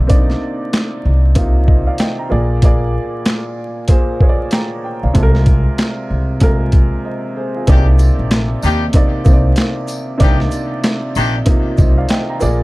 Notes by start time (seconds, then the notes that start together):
Already playing: C3 A#3 D#4 C5 D5
0.00 B1
0.07 A#3 C4 D4 D5, kick, closed hi-hat
0.15 D#4
0.30 snare
0.73 snare, clap, closed hi-hat
1.05 C2
1.35 C3 A#3 D#4 F4, kick, closed hi-hat
1.67 C5 D#5, kick
1.87 D5 F5
1.98 D#5 G5, snare, clap, closed hi-hat
2.19 G5 A#5
2.29 A#1 A#2 A#3 G#4 D5
2.62 A#2 A#3 G#4 D5, kick, closed hi-hat
3.26 snare, clap, closed hi-hat
3.88 A#2 A#3 G#4 C5, kick, closed hi-hat
4.20 A#2 A#3 G#4 C#5, kick
4.29 D5
4.51 G5 A#5, snare, clap, closed hi-hat
4.84 G5
5.03 B1 D5 F5
5.14 C2 C3 G#3 F4 A4, kick, closed hi-hat
5.23 A#4
5.35 snare
5.46 kick, closed hi-hat
5.78 snare, clap, closed hi-hat
6.10 C2
6.40 C3 G#3 F4 A#4, kick, closed hi-hat
6.72 kick, closed hi-hat
7.05 C5 D#5
7.36 G#4 C5
7.56 F4 G#4
7.67 C2 C3 D#3 A#3 D4 D#4 G4 D5, kick, closed hi-hat
7.99 tambourine, shaker
8.19 A#1
8.31 snare, clap, closed hi-hat
8.62 D#2 D#3 D4 G4, tambourine, shaker
8.93 C3 A#3 D#4 D5, kick, closed hi-hat
9.24 C2 C3 A#3 D#4 C5, kick, tambourine, shaker
9.33 D5
9.56 snare, clap, closed hi-hat
9.87 tambourine, shaker
10.18 C2 C3 D#3 A#3 D4 G4 D5, kick, closed hi-hat
10.26 D#4
10.40 snare
10.51 tambourine, shaker
10.84 snare, clap, closed hi-hat
11.15 A#1 D#3 D4 G4, tambourine, shaker
11.45 C3 A#3 D#4 F4, kick, closed hi-hat
11.77 C2 C5 D#5, kick, tambourine, shaker
11.98 D5 F5
12.09 D#5 G5, snare, clap, closed hi-hat
12.30 G5 A#5
12.40 A#1 A#2 A#3 G#4 D5, tambourine, shaker